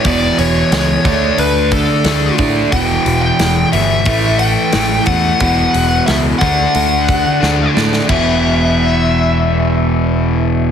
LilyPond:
<<
  \new Staff \with { instrumentName = "Lead electric guitar" } { \time 4/4 \key e \dorian \tempo 4 = 89 d''8 cis''4. b'8 a'4 r8 | g''8. g''8. e''4 g''4 fis''8~ | fis''4 e''8 fis''2 r8 | e''1 | }
  \new Staff \with { instrumentName = "Overdriven electric guitar" } { \clef bass \time 4/4 \key e \dorian <e, b, e>4. <d a d'>4. <d a d'>4 | <e, b, e>4. <e, b, e>8 <a, e a>4. <a, e a>8 | <e, b, e>4. <d a d'>4. <d a d'>4 | <e, b, e>1 | }
  \new Staff \with { instrumentName = "Overdriven electric guitar" } { \clef bass \time 4/4 \key e \dorian <e, b, e>4. <d a d'>2 <d a d'>8 | <e, b, e>2 <a, e a>2 | <e, b, e>4. <d a d'>2 <d a d'>8 | <e, b, e>1 | }
  \new Staff \with { instrumentName = "Picked electric bass" } { \clef bass \time 4/4 \key e \dorian e,,8 e,,8 cis,8 d,8 d,4 d,8 a,8 | e,,8 e,,8 e,,8 g,,8 a,,4 a,,8 e,8 | e,,8 e,,8 cis,8 d,8 d,4 d,8 a,8 | e,,1 | }
  \new DrumStaff \with { instrumentName = "Drums" } \drummode { \time 4/4 <hho bd>8 hho8 <hho sn>8 <hho bd>8 hho8 <hho bd>8 <hho sn>8 <hho bd>8 | <hho bd>8 hho8 <hho sn>8 hho8 <hho bd>8 hho8 <hho sn>8 <hho bd>8 | <hho bd>8 hho8 <hho sn>8 <hho bd>8 hho8 <hho bd>8 sn8 sn16 sn16 | <cymc bd>4 r4 r4 r4 | }
>>